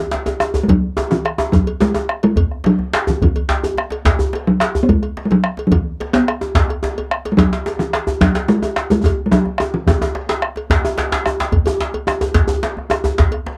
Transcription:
Already playing: E3
0.11 djembe slap
0.14 djembe slap
0.26 cowbell, djembe tone
0.40 bombo rim, djembe tone
0.54 cowbell, djembe slap, djembe bass
0.63 G#3
0.68 F#3, bombo low, cowbell, djembe bass
0.97 cowbell, djembe slap, djembe tone
1.11 E3, bombo rim, djembe slap, djembe tone
1.25 bombo rim, cowbell, djembe slap
1.38 bombo rim, djembe slap, djembe tone
1.52 F#3, bombo low, cowbell, djembe tone, djembe bass
1.67 cowbell
1.80 G#3, djembe slap, djembe tone
1.94 cowbell, djembe tone
2.09 bombo rim
2.23 G#3, cowbell, djembe slap
2.36 bombo low, cowbell, djembe bass
2.51 bombo rim
2.64 F#3, bombo rim, cowbell, djembe slap
2.79 djembe tone
2.93 bombo rim, cowbell, djembe slap
3.07 E3, djembe slap, djembe bass
3.22 E3, bombo low, cowbell, djembe bass
3.36 cowbell, djembe bass
3.49 djembe slap, djembe bass
3.64 bombo rim, cowbell, djembe bass
3.78 bombo rim, djembe slap
3.90 cowbell, djembe slap
4.05 bombo low, cowbell, djembe slap, djembe bass
4.19 djembe bass
4.33 cowbell, djembe slap
4.47 F#3, bombo rim, djembe slap, djembe tone
4.60 bombo rim, cowbell, djembe slap
4.75 bombo rim, djembe bass
4.83 B3
4.89 G#3, bombo low, cowbell, djembe bass
5.03 bombo rim, cowbell
5.17 djembe slap
5.25 G#3
5.31 F#3, cowbell, djembe tone
5.44 bombo rim
5.57 cowbell, djembe slap
5.67 F#3
5.71 E3, bombo low, cowbell, djembe bass
6.00 cowbell, djembe slap
6.13 B3, bombo rim, djembe slap, djembe tone
6.28 bombo rim, cowbell, djembe slap
6.41 bombo rim, djembe slap, djembe tone
6.55 bombo low, cowbell, djembe slap, djembe bass
6.69 bombo rim, cowbell
6.83 djembe slap, djembe tone
6.98 cowbell, djembe tone
7.11 bombo rim
7.25 cowbell, djembe slap
7.32 G#3
7.37 F#3, bombo low, cowbell, djembe slap, djembe bass
7.53 djembe slap
7.66 cowbell, djembe slap, djembe tone
7.79 E3, bombo rim, djembe slap, djembe tone
7.93 bombo rim, cowbell, djembe slap
8.07 bombo rim, djembe slap, djembe bass
8.21 F#3, bombo low, cowbell, djembe slap, djembe bass
8.35 bombo rim, cowbell, djembe slap
8.48 G#3, djembe slap, djembe tone
8.62 cowbell, djembe tone
8.76 bombo rim, djembe slap
8.90 G#3, cowbell, djembe slap, djembe bass
9.04 bombo rim, bombo low, cowbell, djembe tone, djembe bass
9.19 djembe slap
9.26 G#3
9.31 F#3, cowbell, djembe slap, djembe tone
9.45 bombo rim, djembe tone
9.58 bombo rim, cowbell, djembe slap, djembe tone
9.74 E3, djembe slap
9.87 E3, bombo low, cowbell, djembe tone, djembe bass
10.02 cowbell, djembe tone
10.15 bombo rim, djembe slap
10.29 bombo rim, cowbell, djembe slap, djembe tone
10.42 bombo rim
10.56 cowbell, djembe slap
10.70 bombo low, cowbell, djembe slap, djembe bass
10.85 djembe tone
10.98 cowbell, djembe slap
11.12 bombo rim, djembe slap, djembe tone
11.26 bombo rim, djembe slap, djembe tone
11.40 bombo rim, djembe slap
11.52 bombo low, cowbell, djembe bass
11.66 bombo rim, cowbell, djembe bass
11.81 djembe slap
11.94 cowbell, djembe tone
12.07 bombo rim, djembe tone
12.21 cowbell, djembe slap, djembe bass
12.34 bombo low, cowbell, djembe slap, djembe bass
12.48 djembe bass
12.63 cowbell, djembe slap
12.77 bombo rim, djembe slap, djembe tone
12.90 bombo rim, cowbell, djembe slap, djembe tone
13.04 bombo rim, djembe slap, djembe bass
13.18 bombo low, cowbell, djembe slap, djembe bass
13.32 bombo rim, cowbell
13.46 djembe slap

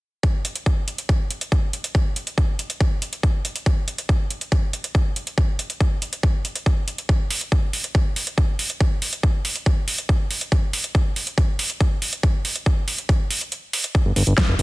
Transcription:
0.23 kick, closed hi-hat
0.45 closed hi-hat
0.56 closed hi-hat
0.66 kick, closed hi-hat
0.88 closed hi-hat
0.98 closed hi-hat
1.09 kick, closed hi-hat
1.31 closed hi-hat
1.41 closed hi-hat
1.52 kick, closed hi-hat
1.73 closed hi-hat
1.84 closed hi-hat
1.95 kick, closed hi-hat
2.16 closed hi-hat
2.27 closed hi-hat
2.38 kick, closed hi-hat
2.59 closed hi-hat
2.70 closed hi-hat
2.81 kick, closed hi-hat
3.02 closed hi-hat
3.13 closed hi-hat
3.23 kick, closed hi-hat
3.45 closed hi-hat
3.56 closed hi-hat
3.66 kick, closed hi-hat
3.88 closed hi-hat
3.98 closed hi-hat
4.09 kick, closed hi-hat
4.31 closed hi-hat
4.41 closed hi-hat
4.52 kick, closed hi-hat
4.73 closed hi-hat
4.84 closed hi-hat
4.95 kick, closed hi-hat
5.16 closed hi-hat
5.27 closed hi-hat
5.38 kick, closed hi-hat
5.59 closed hi-hat
5.70 closed hi-hat
5.80 kick, closed hi-hat
6.02 closed hi-hat
6.13 closed hi-hat
6.23 kick, closed hi-hat
6.45 closed hi-hat
6.55 closed hi-hat
6.66 kick, closed hi-hat
6.88 closed hi-hat
6.98 closed hi-hat
7.09 kick, closed hi-hat
7.30 open hi-hat
7.41 closed hi-hat
7.52 kick, closed hi-hat
7.73 open hi-hat
7.84 closed hi-hat
7.95 kick, closed hi-hat
8.16 open hi-hat
8.27 closed hi-hat
8.38 kick, closed hi-hat
8.59 open hi-hat
8.70 closed hi-hat
8.80 kick, closed hi-hat
9.02 open hi-hat
9.13 closed hi-hat
9.23 kick, closed hi-hat
9.45 open hi-hat
9.56 closed hi-hat
9.66 kick, closed hi-hat
9.88 open hi-hat
9.98 closed hi-hat
10.09 kick, closed hi-hat
10.31 open hi-hat
10.41 closed hi-hat
10.52 kick, closed hi-hat
10.73 open hi-hat
10.84 closed hi-hat
10.95 kick, closed hi-hat
11.16 open hi-hat
11.27 closed hi-hat
11.38 kick, closed hi-hat
11.59 open hi-hat
11.70 closed hi-hat
11.80 kick, closed hi-hat
12.02 open hi-hat
12.13 closed hi-hat
12.23 kick, closed hi-hat
12.45 open hi-hat
12.56 closed hi-hat
12.66 kick, closed hi-hat
12.88 open hi-hat
12.98 closed hi-hat
13.09 kick, closed hi-hat
13.31 open hi-hat
13.41 closed hi-hat
13.52 closed hi-hat
13.73 open hi-hat
13.84 closed hi-hat
13.95 kick, closed hi-hat
14.05 G1
14.16 G1, open hi-hat
14.27 G1, closed hi-hat
14.38 kick, snare, closed hi-hat
14.48 F1
14.59 F1, open hi-hat

